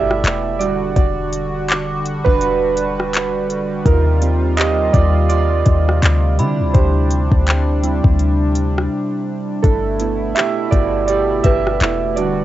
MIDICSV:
0, 0, Header, 1, 6, 480
1, 0, Start_track
1, 0, Key_signature, 1, "major"
1, 0, Tempo, 722892
1, 640, Time_signature, 4, 2, 24, 8
1, 8263, End_track
2, 0, Start_track
2, 0, Title_t, "Synth bell"
2, 0, Program_c, 0, 98
2, 0, Note_on_c, 0, 88, 73
2, 612, Note_off_c, 0, 88, 0
2, 1118, Note_on_c, 0, 86, 70
2, 2531, Note_off_c, 0, 86, 0
2, 4245, Note_on_c, 0, 83, 75
2, 4966, Note_on_c, 0, 79, 50
2, 5655, Note_off_c, 0, 83, 0
2, 6376, Note_off_c, 0, 79, 0
2, 7604, Note_on_c, 0, 71, 69
2, 8263, Note_off_c, 0, 71, 0
2, 8263, End_track
3, 0, Start_track
3, 0, Title_t, "Synth keys"
3, 0, Program_c, 1, 88
3, 0, Control_c, 1, 64, 127
3, 0, Note_on_c, 1, 57, 55
3, 0, Note_on_c, 1, 59, 47
3, 0, Note_on_c, 1, 62, 76
3, 0, Note_on_c, 1, 64, 62
3, 0, Note_on_c, 1, 66, 80
3, 0, Note_on_c, 1, 67, 83
3, 0, Note_on_c, 1, 69, 97
3, 0, Note_on_c, 1, 74, 111
3, 0, Note_on_c, 1, 76, 103
3, 369, Note_off_c, 1, 76, 0
3, 377, Note_off_c, 1, 67, 0
3, 393, Note_off_c, 1, 74, 0
3, 393, Note_on_c, 1, 74, 98
3, 397, Note_on_c, 1, 55, 58
3, 401, Note_off_c, 1, 62, 0
3, 401, Note_on_c, 1, 62, 53
3, 405, Note_off_c, 1, 66, 0
3, 405, Note_on_c, 1, 66, 65
3, 406, Note_off_c, 1, 66, 0
3, 406, Note_on_c, 1, 66, 71
3, 408, Control_c, 1, 64, 0
3, 409, Note_off_c, 1, 64, 0
3, 413, Note_off_c, 1, 57, 0
3, 413, Note_off_c, 1, 69, 0
3, 414, Note_off_c, 1, 59, 0
3, 523, Control_c, 1, 64, 127
3, 619, Note_off_c, 1, 74, 0
3, 627, Note_off_c, 1, 66, 0
3, 636, Note_on_c, 1, 74, 88
3, 649, Note_on_c, 1, 66, 69
3, 732, Note_off_c, 1, 55, 0
3, 734, Note_off_c, 1, 62, 0
3, 1231, Note_off_c, 1, 74, 0
3, 1237, Note_off_c, 1, 66, 0
3, 1491, Note_on_c, 1, 71, 113
3, 1507, Note_on_c, 1, 62, 90
3, 2289, Note_off_c, 1, 71, 0
3, 2297, Note_off_c, 1, 62, 0
3, 2558, Note_on_c, 1, 70, 94
3, 2566, Note_on_c, 1, 63, 72
3, 2569, Control_c, 1, 64, 0
3, 2677, Control_c, 1, 64, 127
3, 2798, Note_on_c, 1, 55, 58
3, 2801, Note_on_c, 1, 60, 58
3, 2805, Note_on_c, 1, 65, 65
3, 3016, Note_off_c, 1, 63, 0
3, 3035, Note_on_c, 1, 75, 111
3, 3045, Note_on_c, 1, 67, 82
3, 3053, Note_off_c, 1, 70, 0
3, 3266, Note_off_c, 1, 67, 0
3, 3274, Note_on_c, 1, 74, 103
3, 3279, Note_off_c, 1, 65, 0
3, 3284, Note_off_c, 1, 75, 0
3, 3287, Note_on_c, 1, 65, 86
3, 3506, Note_off_c, 1, 74, 0
3, 3507, Note_off_c, 1, 65, 0
3, 3514, Note_on_c, 1, 74, 110
3, 3527, Note_on_c, 1, 65, 91
3, 4212, Note_off_c, 1, 55, 0
3, 4214, Note_off_c, 1, 60, 0
3, 4238, Note_on_c, 1, 55, 59
3, 4241, Note_on_c, 1, 60, 54
3, 4246, Note_on_c, 1, 64, 65
3, 4249, Control_c, 1, 64, 0
3, 4347, Control_c, 1, 64, 127
3, 4457, Note_off_c, 1, 65, 0
3, 4474, Note_on_c, 1, 72, 87
3, 4488, Note_on_c, 1, 67, 68
3, 4506, Note_off_c, 1, 74, 0
3, 5190, Note_off_c, 1, 55, 0
3, 5194, Note_off_c, 1, 60, 0
3, 5197, Note_off_c, 1, 64, 0
3, 5198, Note_on_c, 1, 55, 53
3, 5202, Note_on_c, 1, 60, 48
3, 5205, Note_on_c, 1, 64, 56
3, 5410, Note_off_c, 1, 72, 0
3, 5415, Note_off_c, 1, 55, 0
3, 5417, Note_off_c, 1, 60, 0
3, 5417, Note_off_c, 1, 67, 0
3, 5419, Note_off_c, 1, 64, 0
3, 6392, Note_on_c, 1, 69, 96
3, 6407, Note_on_c, 1, 62, 74
3, 6410, Control_c, 1, 64, 0
3, 6537, Control_c, 1, 64, 127
3, 6639, Note_on_c, 1, 57, 60
3, 6643, Note_on_c, 1, 59, 54
3, 6648, Note_on_c, 1, 64, 63
3, 6857, Note_off_c, 1, 62, 0
3, 6872, Note_on_c, 1, 76, 103
3, 6887, Note_on_c, 1, 67, 83
3, 6891, Note_off_c, 1, 69, 0
3, 7099, Note_off_c, 1, 76, 0
3, 7107, Note_off_c, 1, 67, 0
3, 7110, Note_on_c, 1, 74, 102
3, 7125, Note_on_c, 1, 66, 76
3, 7333, Note_off_c, 1, 57, 0
3, 7335, Note_off_c, 1, 59, 0
3, 7338, Note_off_c, 1, 64, 0
3, 7345, Note_off_c, 1, 74, 0
3, 7346, Note_off_c, 1, 66, 0
3, 7353, Note_on_c, 1, 74, 107
3, 7367, Note_on_c, 1, 67, 88
3, 7587, Note_off_c, 1, 67, 0
3, 7593, Note_on_c, 1, 76, 105
3, 7604, Note_off_c, 1, 74, 0
3, 7608, Note_on_c, 1, 67, 82
3, 7843, Note_on_c, 1, 57, 50
3, 7846, Note_on_c, 1, 59, 46
3, 7848, Note_on_c, 1, 64, 57
3, 8057, Note_off_c, 1, 67, 0
3, 8058, Note_off_c, 1, 57, 0
3, 8059, Note_off_c, 1, 59, 0
3, 8061, Note_off_c, 1, 64, 0
3, 8075, Note_on_c, 1, 74, 97
3, 8080, Note_on_c, 1, 55, 63
3, 8084, Note_on_c, 1, 62, 56
3, 8088, Note_on_c, 1, 66, 67
3, 8089, Note_off_c, 1, 66, 0
3, 8089, Control_c, 1, 64, 0
3, 8089, Note_on_c, 1, 66, 73
3, 8091, Note_off_c, 1, 76, 0
3, 8191, Control_c, 1, 64, 127
3, 8263, Note_off_c, 1, 55, 0
3, 8263, Note_off_c, 1, 62, 0
3, 8263, Note_off_c, 1, 66, 0
3, 8263, Note_off_c, 1, 74, 0
3, 8263, End_track
4, 0, Start_track
4, 0, Title_t, "Analog synth pad"
4, 0, Program_c, 2, 89
4, 0, Note_on_c, 2, 47, 73
4, 0, Note_on_c, 2, 57, 71
4, 0, Note_on_c, 2, 64, 86
4, 382, Note_off_c, 2, 47, 0
4, 382, Note_off_c, 2, 57, 0
4, 382, Note_off_c, 2, 64, 0
4, 400, Note_on_c, 2, 50, 85
4, 401, Note_on_c, 2, 66, 93
4, 404, Note_on_c, 2, 55, 72
4, 2539, Note_off_c, 2, 50, 0
4, 2539, Note_off_c, 2, 66, 0
4, 2558, Note_on_c, 2, 48, 77
4, 2558, Note_on_c, 2, 65, 89
4, 4215, Note_off_c, 2, 55, 0
4, 4222, Note_off_c, 2, 65, 0
4, 4239, Note_on_c, 2, 55, 75
4, 4239, Note_on_c, 2, 62, 92
4, 6372, Note_off_c, 2, 48, 0
4, 6378, Note_off_c, 2, 55, 0
4, 6378, Note_off_c, 2, 62, 0
4, 6399, Note_on_c, 2, 47, 74
4, 6399, Note_on_c, 2, 64, 88
4, 6400, Note_on_c, 2, 57, 73
4, 8062, Note_off_c, 2, 47, 0
4, 8063, Note_off_c, 2, 57, 0
4, 8063, Note_off_c, 2, 64, 0
4, 8078, Note_on_c, 2, 50, 86
4, 8078, Note_on_c, 2, 55, 74
4, 8079, Note_on_c, 2, 66, 88
4, 8263, Note_off_c, 2, 50, 0
4, 8263, Note_off_c, 2, 55, 0
4, 8263, Note_off_c, 2, 66, 0
4, 8263, End_track
5, 0, Start_track
5, 0, Title_t, "808-style bass"
5, 0, Program_c, 3, 38
5, 0, Note_on_c, 3, 31, 105
5, 151, Note_off_c, 3, 31, 0
5, 158, Note_on_c, 3, 28, 104
5, 620, Note_off_c, 3, 28, 0
5, 641, Note_on_c, 3, 28, 109
5, 1473, Note_off_c, 3, 28, 0
5, 1502, Note_on_c, 3, 28, 106
5, 2535, Note_off_c, 3, 28, 0
5, 2561, Note_on_c, 3, 39, 110
5, 3254, Note_off_c, 3, 39, 0
5, 3280, Note_on_c, 3, 39, 111
5, 3741, Note_off_c, 3, 39, 0
5, 3761, Note_on_c, 3, 39, 96
5, 3991, Note_off_c, 3, 39, 0
5, 4002, Note_on_c, 3, 38, 109
5, 4240, Note_on_c, 3, 50, 103
5, 4250, Note_off_c, 3, 38, 0
5, 4380, Note_on_c, 3, 38, 98
5, 4390, Note_off_c, 3, 50, 0
5, 4476, Note_off_c, 3, 38, 0
5, 4481, Note_on_c, 3, 38, 106
5, 4845, Note_off_c, 3, 38, 0
5, 4858, Note_on_c, 3, 38, 98
5, 5319, Note_off_c, 3, 38, 0
5, 5341, Note_on_c, 3, 38, 105
5, 5898, Note_off_c, 3, 38, 0
5, 6401, Note_on_c, 3, 31, 107
5, 6861, Note_off_c, 3, 31, 0
5, 7121, Note_on_c, 3, 31, 105
5, 7581, Note_off_c, 3, 31, 0
5, 7601, Note_on_c, 3, 31, 103
5, 7831, Note_off_c, 3, 31, 0
5, 7841, Note_on_c, 3, 28, 106
5, 8263, Note_off_c, 3, 28, 0
5, 8263, End_track
6, 0, Start_track
6, 0, Title_t, "Drums"
6, 71, Note_on_c, 9, 37, 98
6, 137, Note_off_c, 9, 37, 0
6, 161, Note_on_c, 9, 42, 85
6, 169, Note_on_c, 9, 39, 109
6, 228, Note_off_c, 9, 42, 0
6, 236, Note_off_c, 9, 39, 0
6, 403, Note_on_c, 9, 42, 62
6, 469, Note_off_c, 9, 42, 0
6, 639, Note_on_c, 9, 42, 72
6, 640, Note_on_c, 9, 36, 115
6, 706, Note_off_c, 9, 36, 0
6, 706, Note_off_c, 9, 42, 0
6, 880, Note_on_c, 9, 42, 83
6, 947, Note_off_c, 9, 42, 0
6, 1118, Note_on_c, 9, 42, 67
6, 1129, Note_on_c, 9, 39, 121
6, 1184, Note_off_c, 9, 42, 0
6, 1195, Note_off_c, 9, 39, 0
6, 1364, Note_on_c, 9, 42, 71
6, 1431, Note_off_c, 9, 42, 0
6, 1500, Note_on_c, 9, 36, 102
6, 1566, Note_off_c, 9, 36, 0
6, 1601, Note_on_c, 9, 42, 67
6, 1667, Note_off_c, 9, 42, 0
6, 1839, Note_on_c, 9, 42, 81
6, 1905, Note_off_c, 9, 42, 0
6, 1990, Note_on_c, 9, 37, 94
6, 2057, Note_off_c, 9, 37, 0
6, 2083, Note_on_c, 9, 42, 85
6, 2091, Note_on_c, 9, 39, 111
6, 2149, Note_off_c, 9, 42, 0
6, 2157, Note_off_c, 9, 39, 0
6, 2323, Note_on_c, 9, 42, 63
6, 2389, Note_off_c, 9, 42, 0
6, 2560, Note_on_c, 9, 36, 118
6, 2560, Note_on_c, 9, 42, 68
6, 2626, Note_off_c, 9, 36, 0
6, 2626, Note_off_c, 9, 42, 0
6, 2799, Note_on_c, 9, 42, 86
6, 2866, Note_off_c, 9, 42, 0
6, 3036, Note_on_c, 9, 42, 76
6, 3047, Note_on_c, 9, 39, 114
6, 3102, Note_off_c, 9, 42, 0
6, 3113, Note_off_c, 9, 39, 0
6, 3279, Note_on_c, 9, 36, 99
6, 3279, Note_on_c, 9, 42, 73
6, 3345, Note_off_c, 9, 36, 0
6, 3346, Note_off_c, 9, 42, 0
6, 3517, Note_on_c, 9, 42, 70
6, 3584, Note_off_c, 9, 42, 0
6, 3756, Note_on_c, 9, 42, 83
6, 3760, Note_on_c, 9, 36, 91
6, 3823, Note_off_c, 9, 42, 0
6, 3826, Note_off_c, 9, 36, 0
6, 3910, Note_on_c, 9, 37, 95
6, 3976, Note_off_c, 9, 37, 0
6, 4002, Note_on_c, 9, 42, 84
6, 4010, Note_on_c, 9, 39, 113
6, 4069, Note_off_c, 9, 42, 0
6, 4077, Note_off_c, 9, 39, 0
6, 4243, Note_on_c, 9, 42, 64
6, 4309, Note_off_c, 9, 42, 0
6, 4479, Note_on_c, 9, 42, 71
6, 4480, Note_on_c, 9, 36, 122
6, 4546, Note_off_c, 9, 42, 0
6, 4547, Note_off_c, 9, 36, 0
6, 4718, Note_on_c, 9, 42, 82
6, 4785, Note_off_c, 9, 42, 0
6, 4858, Note_on_c, 9, 36, 94
6, 4924, Note_off_c, 9, 36, 0
6, 4957, Note_on_c, 9, 42, 70
6, 4969, Note_on_c, 9, 39, 117
6, 5024, Note_off_c, 9, 42, 0
6, 5035, Note_off_c, 9, 39, 0
6, 5202, Note_on_c, 9, 42, 76
6, 5269, Note_off_c, 9, 42, 0
6, 5339, Note_on_c, 9, 36, 99
6, 5406, Note_off_c, 9, 36, 0
6, 5440, Note_on_c, 9, 42, 72
6, 5506, Note_off_c, 9, 42, 0
6, 5679, Note_on_c, 9, 42, 83
6, 5745, Note_off_c, 9, 42, 0
6, 5831, Note_on_c, 9, 37, 97
6, 5897, Note_off_c, 9, 37, 0
6, 6400, Note_on_c, 9, 42, 70
6, 6401, Note_on_c, 9, 36, 117
6, 6467, Note_off_c, 9, 36, 0
6, 6467, Note_off_c, 9, 42, 0
6, 6638, Note_on_c, 9, 42, 85
6, 6704, Note_off_c, 9, 42, 0
6, 6877, Note_on_c, 9, 42, 72
6, 6889, Note_on_c, 9, 39, 120
6, 6944, Note_off_c, 9, 42, 0
6, 6955, Note_off_c, 9, 39, 0
6, 7120, Note_on_c, 9, 36, 98
6, 7121, Note_on_c, 9, 42, 71
6, 7186, Note_off_c, 9, 36, 0
6, 7187, Note_off_c, 9, 42, 0
6, 7356, Note_on_c, 9, 42, 67
6, 7423, Note_off_c, 9, 42, 0
6, 7595, Note_on_c, 9, 42, 80
6, 7599, Note_on_c, 9, 36, 96
6, 7662, Note_off_c, 9, 42, 0
6, 7666, Note_off_c, 9, 36, 0
6, 7748, Note_on_c, 9, 37, 94
6, 7814, Note_off_c, 9, 37, 0
6, 7839, Note_on_c, 9, 42, 86
6, 7847, Note_on_c, 9, 39, 113
6, 7905, Note_off_c, 9, 42, 0
6, 7913, Note_off_c, 9, 39, 0
6, 8081, Note_on_c, 9, 42, 65
6, 8147, Note_off_c, 9, 42, 0
6, 8263, End_track
0, 0, End_of_file